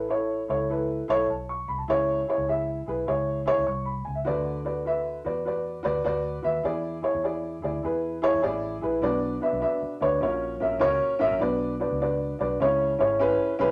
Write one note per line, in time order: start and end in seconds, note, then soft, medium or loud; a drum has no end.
0.00 0.46 A1 loud
0.00 0.45 A2 medium
0.09 0.41 E4 medium
0.09 0.41 A4 medium
0.09 0.42 C#5 medium
0.48 1.01 C#2 medium
0.48 0.65 E4 medium
0.48 0.65 A4 medium
0.48 0.66 C#5 medium
0.70 1.01 E4 medium
0.70 1.01 A4 medium
0.70 1.02 B4 medium
1.08 1.27 B1 medium
1.08 1.25 E4 loud
1.08 1.25 A4 medium
1.08 1.26 C#5 loud
1.29 1.64 B1 medium
1.29 1.48 A5 medium
1.49 1.68 C#6 medium
1.68 1.86 C2 medium
1.68 1.78 B5 medium
1.78 2.07 A5 medium
1.88 2.23 C#2 loud
1.88 2.84 C#3 medium
1.88 2.20 E4 loud
1.88 2.20 G#4 medium
1.88 2.21 C#5 loud
2.27 2.44 E4 medium
2.27 2.44 G#4 medium
2.27 2.45 C#5 medium
2.38 2.81 C#2 medium
2.47 2.79 E4 medium
2.47 2.80 G#4 medium
2.47 2.80 E5 medium
2.86 3.05 B1 medium
2.86 3.03 E4 medium
2.86 3.04 G#4 medium
2.86 3.04 B4 medium
3.07 3.51 C#2 medium
3.07 3.39 E4 medium
3.07 3.39 G#4 medium
3.07 3.39 C#5 medium
3.46 3.63 E4 loud
3.46 3.63 G#4 loud
3.46 3.63 C#5 loud
3.58 3.66 C#2 medium
3.67 4.02 C2 medium
3.67 3.86 C#6 medium
3.85 4.05 B5 medium
4.05 4.25 C#2 medium
4.05 4.15 G#5 medium
4.15 4.44 E5 medium
4.25 5.22 D2 loud
4.25 5.21 D3 medium
4.25 4.57 F#4 loud
4.25 4.57 B4 medium
4.25 4.58 D5 loud
4.64 4.81 F#4 medium
4.64 4.82 B4 medium
4.64 4.82 D5 medium
4.85 5.17 F#4 medium
4.85 5.18 B4 medium
4.85 5.18 E5 medium
5.25 5.78 E2 medium
5.25 5.41 F#4 medium
5.25 5.42 B4 medium
5.25 5.42 D5 medium
5.45 5.77 F#4 medium
5.45 5.77 B4 medium
5.45 5.78 D5 medium
5.83 6.03 D2 medium
5.83 6.00 F#4 loud
5.83 6.01 B4 loud
5.83 6.01 D5 loud
6.04 6.40 D2 medium
6.04 6.36 F#4 loud
6.04 6.36 B4 loud
6.04 6.37 D5 loud
6.42 6.62 D#2 medium
6.42 6.60 F#4 medium
6.42 6.60 B4 medium
6.42 6.61 E5 loud
6.64 6.99 E2 loud
6.64 7.59 E3 medium
6.64 6.96 E4 loud
6.64 6.96 G#4 loud
6.64 6.96 D5 loud
7.02 7.19 E4 medium
7.02 7.20 G#4 medium
7.02 7.20 C#5 medium
7.15 7.58 E2 loud
7.23 7.55 E4 medium
7.23 7.56 G#4 medium
7.23 7.56 D5 medium
7.62 7.82 D2 medium
7.62 7.79 E4 medium
7.62 7.80 G#4 medium
7.62 7.80 D5 medium
7.83 8.27 E2 medium
7.83 8.15 E4 medium
7.83 8.15 G#4 medium
7.83 8.16 B4 medium
8.22 8.39 E4 loud
8.22 8.39 G#4 loud
8.22 8.40 C#5 loud
8.34 8.43 E2 medium
8.42 8.78 A1 medium
8.42 8.74 E4 loud
8.42 8.74 G#4 loud
8.42 8.75 D5 loud
8.81 9.01 A#1 medium
8.81 8.98 E4 medium
8.81 8.99 G#4 medium
8.81 8.99 B4 medium
9.02 9.38 B1 loud
9.02 9.98 B2 medium
9.02 9.34 D4 loud
9.02 9.34 F#4 medium
9.02 9.34 B4 medium
9.02 9.35 D5 loud
9.41 9.58 D4 medium
9.41 9.58 F#4 medium
9.41 9.58 B4 medium
9.41 9.59 E5 medium
9.53 9.62 B1 medium
9.61 9.93 D4 medium
9.61 9.93 F#4 medium
9.61 9.94 B4 medium
9.61 9.94 E5 medium
9.82 muted fingered electric bass stroke soft
10.01 10.19 D2 medium
10.01 10.18 D4 medium
10.01 10.18 F#4 medium
10.01 10.18 B4 medium
10.01 10.18 C#5 loud
10.21 10.56 A#1 medium
10.21 11.17 A#2 medium
10.21 10.53 C#4 medium
10.21 10.53 F#4 medium
10.21 10.54 A#4 medium
10.21 10.54 C#5 medium
10.60 10.79 A#1 medium
10.60 10.77 C#4 medium
10.60 10.77 F#4 medium
10.60 10.78 A#4 medium
10.60 10.78 E5 medium
10.80 10.99 C#2 medium
10.80 11.12 C#4 loud
10.80 11.12 F#4 loud
10.80 11.13 A#4 loud
10.80 11.13 C#5 loud
11.19 11.30 A1 loud
11.19 11.36 C#4 loud
11.19 11.37 F#4 loud
11.19 11.37 A#4 loud
11.19 11.37 E5 loud
11.31 11.40 A#1 loud
11.40 11.85 B1 loud
11.40 12.36 B2 medium
11.40 11.72 D4 loud
11.40 11.72 F#4 medium
11.40 11.73 B4 loud
11.40 11.73 D5 loud
11.80 11.97 D4 medium
11.80 11.97 F#4 medium
11.80 11.97 B4 medium
11.80 11.97 D5 medium
11.91 12.34 C#2 medium
12.00 12.32 D4 medium
12.00 12.33 F#4 medium
12.00 12.33 B4 medium
12.00 12.33 D5 medium
12.39 12.58 B1 loud
12.39 12.56 D4 medium
12.39 12.56 F#4 medium
12.39 12.57 B4 medium
12.39 12.57 D5 medium
12.60 12.95 C#2 loud
12.60 13.56 C#3 medium
12.60 12.92 C#4 medium
12.60 12.92 E4 medium
12.60 12.92 G#4 medium
12.60 12.93 C#5 loud
12.99 13.35 G#1 medium
12.99 13.16 C#4 medium
12.99 13.16 E4 medium
12.99 13.16 G#4 medium
12.99 13.17 C#5 medium
13.20 13.51 C#4 loud
13.20 13.52 E4 loud
13.20 13.52 G#4 loud
13.20 13.52 B4 loud
13.59 13.69 B1 medium
13.59 13.71 C#4 loud
13.59 13.71 E4 loud
13.59 13.71 G#4 loud
13.59 13.71 B4 loud